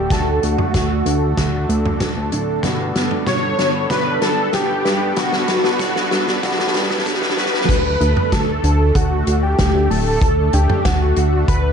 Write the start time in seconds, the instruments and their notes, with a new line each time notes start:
Already playing: analog synth pad A3 D4 A4, analog synth lead G4
0.10 analog synth bass D2, synth arpeggio sound D3, electric grand piano D3 A3 D4 F#4, analog synth lead A4, fm electric piano A5, kick, snare, closed hi-hat
0.43 analog synth bass D2, synth arpeggio sound A3, analog synth lead F#4, fm electric piano F#5, closed hi-hat
0.58 mid tom
0.74 analog synth bass D2, synth arpeggio sound D3, kick, snare, closed hi-hat
1.06 analog synth bass D2, synth arpeggio sound D4, closed hi-hat
1.37 analog synth bass D2, electric grand piano D3 A3 D4 F#4, synth arpeggio sound D3, kick, snare, closed hi-hat
1.69 analog synth bass D2, synth arpeggio sound A3, closed hi-hat
1.86 mid tom
2.00 analog synth bass D2, synth arpeggio sound D3, kick, snare, closed hi-hat
2.16 analog synth bass D2
2.32 analog synth bass D1, synth arpeggio sound D4, closed hi-hat
2.63 analog synth bass G1, electric grand piano G2 G3 B3 F#4, synth arpeggio sound B2, analog synth pad B3 B4, kick, snare, closed hi-hat
2.95 analog synth bass G1, synth arpeggio sound B3, snare, closed hi-hat
3.11 mid tom
3.27 analog synth bass G1, synth arpeggio sound B2, analog synth lead C#5, fm electric piano C#6, kick, snare, closed hi-hat
3.58 analog synth bass G1, synth arpeggio sound D4, snare, closed hi-hat
3.90 analog synth bass G1, electric grand piano G2 G3 B3 D4, synth arpeggio sound B2, analog synth lead B4, fm electric piano B5, kick, snare, closed hi-hat
4.22 analog synth bass G1, synth arpeggio sound F#3, analog synth lead A4, fm electric piano A5, snare, closed hi-hat
4.53 analog synth bass G1, synth arpeggio sound B2, analog synth lead G4, fm electric piano G5, kick, snare, closed hi-hat
4.69 analog synth bass G1
4.85 analog synth bass G2, synth arpeggio sound G3, snare, closed hi-hat
5.16 analog synth bass G1, electric grand piano G2 G3 B3 F#4, synth arpeggio sound B2, analog synth lead F#4, fm electric piano F#5, kick, snare, closed hi-hat
5.32 snare
5.48 analog synth bass G1, synth arpeggio sound F#3, snare, closed hi-hat
5.64 snare, mid tom
5.79 analog synth bass G1, synth arpeggio sound B2, kick, snare, closed hi-hat
5.96 snare
6.11 analog synth bass G1, synth arpeggio sound G3, snare, closed hi-hat
6.27 snare
6.43 analog synth bass G1, electric grand piano G2 G3 B3 F#4, synth arpeggio sound B2, kick, snare, closed hi-hat
6.51 snare
6.59 snare
6.67 snare
6.74 analog synth bass G2, synth arpeggio sound G3, snare, closed hi-hat
6.83 snare
6.90 snare, mid tom
6.98 snare
7.06 analog synth bass G1, synth arpeggio sound D4, kick, snare, closed hi-hat
7.14 snare
7.22 analog synth bass G1, snare
7.30 snare
7.37 analog synth bass G1, synth arpeggio sound G3, electric grand piano G3 B3 F#4, analog synth lead B4, snare, closed hi-hat
7.46 snare
7.54 snare
7.61 snare
7.69 analog synth bass D2, synth arpeggio sound D3, analog synth pad A3 D4 A4, kick, closed hi-hat, crash
8.01 analog synth bass D2, synth arpeggio sound A3, closed hi-hat
8.17 mid tom
8.32 analog synth bass D2, synth arpeggio sound D3, analog synth lead A4, fm electric piano A5, kick, snare, closed hi-hat
8.64 analog synth bass D2, synth arpeggio sound D4, closed hi-hat
8.95 analog synth bass D2, synth arpeggio sound D3, analog synth lead F#4, fm electric piano F#5, kick, closed hi-hat
9.27 analog synth bass D2, synth arpeggio sound F#4, closed hi-hat
9.43 analog synth lead G4, fm electric piano G5
9.59 analog synth bass D2, synth arpeggio sound D3, kick, snare, closed hi-hat
9.74 analog synth bass D2
9.90 analog synth bass D1, synth arpeggio sound A3, analog synth lead A4, fm electric piano A5, open hi-hat
10.21 analog synth bass D2, synth arpeggio sound D3, kick, closed hi-hat
10.53 analog synth bass D2, synth arpeggio sound D4, analog synth lead G4, fm electric piano G5, closed hi-hat
10.70 mid tom
10.85 analog synth bass D2, synth arpeggio sound D3, analog synth lead F#4, fm electric piano F#5, kick, snare, closed hi-hat
11.16 analog synth bass D2, synth arpeggio sound F#4, closed hi-hat
11.48 analog synth bass D2, synth arpeggio sound D3, analog synth lead B4, fm electric piano B5, kick, closed hi-hat